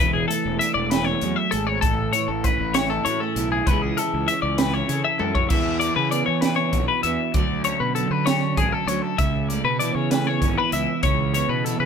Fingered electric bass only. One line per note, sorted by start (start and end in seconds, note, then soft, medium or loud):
0.00 0.24 E1 medium
0.46 0.58 E1 medium
0.75 1.14 E1 medium
1.22 1.34 E2 medium
1.53 1.78 G#1 medium
1.82 2.08 A1 medium
2.29 2.41 A1 medium
2.59 2.98 A1 medium
3.06 3.18 A2 loud
3.36 3.62 B1 medium
3.67 3.92 C#2 medium
4.14 4.26 C#2 medium
4.43 4.81 C#2 medium
4.89 5.02 C#3 loud
5.20 5.46 F#2 medium
5.50 5.89 E2 medium
5.96 6.22 C#3 medium
6.28 6.75 E3 medium
6.74 6.86 B1 medium
7.04 7.17 E2 medium
7.35 7.73 D2 medium
7.80 8.06 B2 medium
8.10 8.59 D3 medium
8.58 8.70 A1 medium
8.86 9.00 D2 medium
9.19 9.57 C#2 medium
9.64 9.90 B2 medium
9.95 10.44 C#3 medium
10.42 10.55 G#1 medium
10.72 10.85 C#2 medium
11.03 11.42 C#2 medium
11.49 11.75 B2 medium
11.80 11.85 C#3 medium